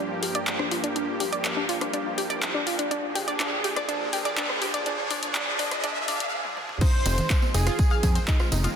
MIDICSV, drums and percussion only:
0, 0, Header, 1, 2, 480
1, 0, Start_track
1, 0, Tempo, 487805
1, 944, Time_signature, 4, 2, 24, 8
1, 8618, End_track
2, 0, Start_track
2, 0, Title_t, "Drums"
2, 223, Note_on_c, 9, 46, 103
2, 321, Note_off_c, 9, 46, 0
2, 344, Note_on_c, 9, 42, 62
2, 442, Note_off_c, 9, 42, 0
2, 463, Note_on_c, 9, 39, 111
2, 463, Note_on_c, 9, 42, 51
2, 561, Note_off_c, 9, 42, 0
2, 562, Note_off_c, 9, 39, 0
2, 584, Note_on_c, 9, 37, 86
2, 682, Note_off_c, 9, 37, 0
2, 703, Note_on_c, 9, 46, 104
2, 802, Note_off_c, 9, 46, 0
2, 824, Note_on_c, 9, 42, 60
2, 922, Note_off_c, 9, 42, 0
2, 944, Note_on_c, 9, 42, 54
2, 1042, Note_off_c, 9, 42, 0
2, 1184, Note_on_c, 9, 46, 106
2, 1282, Note_off_c, 9, 46, 0
2, 1305, Note_on_c, 9, 42, 62
2, 1403, Note_off_c, 9, 42, 0
2, 1424, Note_on_c, 9, 42, 51
2, 1425, Note_on_c, 9, 39, 106
2, 1523, Note_off_c, 9, 39, 0
2, 1523, Note_off_c, 9, 42, 0
2, 1664, Note_on_c, 9, 46, 107
2, 1762, Note_off_c, 9, 46, 0
2, 1785, Note_on_c, 9, 37, 69
2, 1785, Note_on_c, 9, 42, 65
2, 1883, Note_off_c, 9, 37, 0
2, 1883, Note_off_c, 9, 42, 0
2, 1904, Note_on_c, 9, 42, 51
2, 2003, Note_off_c, 9, 42, 0
2, 2144, Note_on_c, 9, 46, 100
2, 2243, Note_off_c, 9, 46, 0
2, 2265, Note_on_c, 9, 42, 63
2, 2363, Note_off_c, 9, 42, 0
2, 2385, Note_on_c, 9, 39, 115
2, 2385, Note_on_c, 9, 42, 57
2, 2483, Note_off_c, 9, 42, 0
2, 2484, Note_off_c, 9, 39, 0
2, 2625, Note_on_c, 9, 46, 105
2, 2723, Note_off_c, 9, 46, 0
2, 2745, Note_on_c, 9, 42, 66
2, 2844, Note_off_c, 9, 42, 0
2, 2865, Note_on_c, 9, 42, 56
2, 2964, Note_off_c, 9, 42, 0
2, 3104, Note_on_c, 9, 46, 110
2, 3203, Note_off_c, 9, 46, 0
2, 3225, Note_on_c, 9, 42, 66
2, 3324, Note_off_c, 9, 42, 0
2, 3345, Note_on_c, 9, 39, 108
2, 3345, Note_on_c, 9, 42, 53
2, 3443, Note_off_c, 9, 39, 0
2, 3443, Note_off_c, 9, 42, 0
2, 3585, Note_on_c, 9, 46, 102
2, 3683, Note_off_c, 9, 46, 0
2, 3705, Note_on_c, 9, 37, 66
2, 3705, Note_on_c, 9, 42, 67
2, 3804, Note_off_c, 9, 37, 0
2, 3804, Note_off_c, 9, 42, 0
2, 3825, Note_on_c, 9, 42, 51
2, 3924, Note_off_c, 9, 42, 0
2, 4063, Note_on_c, 9, 46, 100
2, 4162, Note_off_c, 9, 46, 0
2, 4185, Note_on_c, 9, 42, 68
2, 4284, Note_off_c, 9, 42, 0
2, 4304, Note_on_c, 9, 39, 123
2, 4304, Note_on_c, 9, 42, 56
2, 4402, Note_off_c, 9, 39, 0
2, 4402, Note_off_c, 9, 42, 0
2, 4423, Note_on_c, 9, 37, 86
2, 4522, Note_off_c, 9, 37, 0
2, 4543, Note_on_c, 9, 46, 103
2, 4642, Note_off_c, 9, 46, 0
2, 4664, Note_on_c, 9, 42, 66
2, 4763, Note_off_c, 9, 42, 0
2, 4783, Note_on_c, 9, 42, 56
2, 4881, Note_off_c, 9, 42, 0
2, 5024, Note_on_c, 9, 46, 106
2, 5122, Note_off_c, 9, 46, 0
2, 5143, Note_on_c, 9, 42, 71
2, 5242, Note_off_c, 9, 42, 0
2, 5263, Note_on_c, 9, 39, 123
2, 5263, Note_on_c, 9, 42, 57
2, 5361, Note_off_c, 9, 42, 0
2, 5362, Note_off_c, 9, 39, 0
2, 5502, Note_on_c, 9, 46, 108
2, 5601, Note_off_c, 9, 46, 0
2, 5623, Note_on_c, 9, 37, 65
2, 5623, Note_on_c, 9, 42, 73
2, 5722, Note_off_c, 9, 37, 0
2, 5722, Note_off_c, 9, 42, 0
2, 5743, Note_on_c, 9, 42, 58
2, 5842, Note_off_c, 9, 42, 0
2, 5984, Note_on_c, 9, 46, 102
2, 6082, Note_off_c, 9, 46, 0
2, 6104, Note_on_c, 9, 42, 70
2, 6203, Note_off_c, 9, 42, 0
2, 6345, Note_on_c, 9, 48, 57
2, 6443, Note_off_c, 9, 48, 0
2, 6464, Note_on_c, 9, 47, 77
2, 6563, Note_off_c, 9, 47, 0
2, 6585, Note_on_c, 9, 45, 85
2, 6683, Note_off_c, 9, 45, 0
2, 6702, Note_on_c, 9, 54, 49
2, 6704, Note_on_c, 9, 42, 55
2, 6704, Note_on_c, 9, 49, 100
2, 6704, Note_on_c, 9, 51, 56
2, 6705, Note_on_c, 9, 36, 127
2, 6800, Note_off_c, 9, 54, 0
2, 6803, Note_off_c, 9, 36, 0
2, 6803, Note_off_c, 9, 42, 0
2, 6803, Note_off_c, 9, 49, 0
2, 6803, Note_off_c, 9, 51, 0
2, 6944, Note_on_c, 9, 46, 112
2, 6944, Note_on_c, 9, 51, 86
2, 6945, Note_on_c, 9, 54, 96
2, 7042, Note_off_c, 9, 46, 0
2, 7042, Note_off_c, 9, 51, 0
2, 7043, Note_off_c, 9, 54, 0
2, 7063, Note_on_c, 9, 64, 89
2, 7064, Note_on_c, 9, 42, 70
2, 7066, Note_on_c, 9, 54, 38
2, 7162, Note_off_c, 9, 42, 0
2, 7162, Note_off_c, 9, 64, 0
2, 7165, Note_off_c, 9, 54, 0
2, 7184, Note_on_c, 9, 39, 121
2, 7184, Note_on_c, 9, 42, 57
2, 7184, Note_on_c, 9, 51, 56
2, 7184, Note_on_c, 9, 54, 55
2, 7185, Note_on_c, 9, 36, 110
2, 7282, Note_off_c, 9, 39, 0
2, 7282, Note_off_c, 9, 42, 0
2, 7282, Note_off_c, 9, 51, 0
2, 7282, Note_off_c, 9, 54, 0
2, 7283, Note_off_c, 9, 36, 0
2, 7302, Note_on_c, 9, 54, 38
2, 7305, Note_on_c, 9, 63, 70
2, 7400, Note_off_c, 9, 54, 0
2, 7403, Note_off_c, 9, 63, 0
2, 7424, Note_on_c, 9, 46, 109
2, 7424, Note_on_c, 9, 51, 81
2, 7425, Note_on_c, 9, 76, 66
2, 7428, Note_on_c, 9, 54, 96
2, 7522, Note_off_c, 9, 46, 0
2, 7522, Note_off_c, 9, 51, 0
2, 7523, Note_off_c, 9, 76, 0
2, 7527, Note_off_c, 9, 54, 0
2, 7544, Note_on_c, 9, 37, 66
2, 7544, Note_on_c, 9, 42, 73
2, 7548, Note_on_c, 9, 54, 40
2, 7643, Note_off_c, 9, 37, 0
2, 7643, Note_off_c, 9, 42, 0
2, 7647, Note_off_c, 9, 54, 0
2, 7663, Note_on_c, 9, 42, 53
2, 7663, Note_on_c, 9, 51, 54
2, 7665, Note_on_c, 9, 36, 121
2, 7670, Note_on_c, 9, 54, 53
2, 7762, Note_off_c, 9, 42, 0
2, 7762, Note_off_c, 9, 51, 0
2, 7763, Note_off_c, 9, 36, 0
2, 7769, Note_off_c, 9, 54, 0
2, 7777, Note_on_c, 9, 54, 36
2, 7783, Note_on_c, 9, 76, 64
2, 7875, Note_off_c, 9, 54, 0
2, 7882, Note_off_c, 9, 76, 0
2, 7903, Note_on_c, 9, 46, 108
2, 7903, Note_on_c, 9, 51, 83
2, 7903, Note_on_c, 9, 63, 63
2, 7904, Note_on_c, 9, 54, 78
2, 7905, Note_on_c, 9, 36, 63
2, 8001, Note_off_c, 9, 46, 0
2, 8001, Note_off_c, 9, 51, 0
2, 8001, Note_off_c, 9, 63, 0
2, 8003, Note_off_c, 9, 36, 0
2, 8003, Note_off_c, 9, 54, 0
2, 8024, Note_on_c, 9, 42, 70
2, 8030, Note_on_c, 9, 54, 37
2, 8122, Note_off_c, 9, 42, 0
2, 8128, Note_off_c, 9, 54, 0
2, 8144, Note_on_c, 9, 39, 127
2, 8144, Note_on_c, 9, 42, 55
2, 8144, Note_on_c, 9, 51, 55
2, 8145, Note_on_c, 9, 36, 120
2, 8146, Note_on_c, 9, 54, 49
2, 8243, Note_off_c, 9, 36, 0
2, 8243, Note_off_c, 9, 39, 0
2, 8243, Note_off_c, 9, 42, 0
2, 8243, Note_off_c, 9, 51, 0
2, 8244, Note_off_c, 9, 54, 0
2, 8260, Note_on_c, 9, 54, 38
2, 8264, Note_on_c, 9, 37, 78
2, 8358, Note_off_c, 9, 54, 0
2, 8362, Note_off_c, 9, 37, 0
2, 8383, Note_on_c, 9, 46, 108
2, 8383, Note_on_c, 9, 51, 75
2, 8383, Note_on_c, 9, 54, 101
2, 8384, Note_on_c, 9, 63, 101
2, 8482, Note_off_c, 9, 46, 0
2, 8482, Note_off_c, 9, 51, 0
2, 8482, Note_off_c, 9, 54, 0
2, 8483, Note_off_c, 9, 63, 0
2, 8505, Note_on_c, 9, 42, 70
2, 8505, Note_on_c, 9, 63, 65
2, 8505, Note_on_c, 9, 76, 68
2, 8509, Note_on_c, 9, 54, 46
2, 8603, Note_off_c, 9, 42, 0
2, 8603, Note_off_c, 9, 63, 0
2, 8603, Note_off_c, 9, 76, 0
2, 8607, Note_off_c, 9, 54, 0
2, 8618, End_track
0, 0, End_of_file